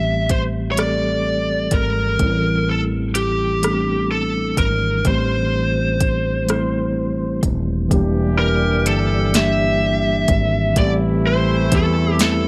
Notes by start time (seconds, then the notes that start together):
Already playing: A1 E3 G3 A3 C4 G4 E5
0.29 C5, kick, closed hi-hat
0.71 E3 C#5
0.76 G3 A3 C4 D5, cross-stick, closed hi-hat
0.80 G4
0.87 A4
1.71 G#1 A#4, kick, closed hi-hat
2.18 A1 E3 G3 C4, kick, closed hi-hat
2.24 E4
2.69 A4
3.15 G4, closed hi-hat
3.61 E3 G3 A3 B3, cross-stick, closed hi-hat
3.66 D4
3.71 C4
4.11 A4
4.57 G#1 A#4, kick, closed hi-hat
5.03 A1 E3 G3 A3, kick, closed hi-hat
5.07 C4 G4 C5
6.01 kick, closed hi-hat
6.45 E3 G3 A3, closed hi-hat
6.49 C4 E4, cross-stick
7.43 D#1, kick, closed hi-hat
7.88 E1 E3 G3 A#3 D4 G4, kick, closed hi-hat
7.93 D4 G4
8.39 A#4
8.86 G1 A4, closed hi-hat
9.31 E3 G3 A#3, closed hi-hat
9.35 D4 G4 E5, snare
10.28 G#1, kick, closed hi-hat
10.74 A1 C3 E3 G3 A3 A#3 E4, kick, closed hi-hat
10.79 G4 D5
10.85 C4
11.27 C5
11.72 E2 A4, kick, closed hi-hat
12.17 E3 G3 A3, snare, closed hi-hat
12.21 C4 E4 A4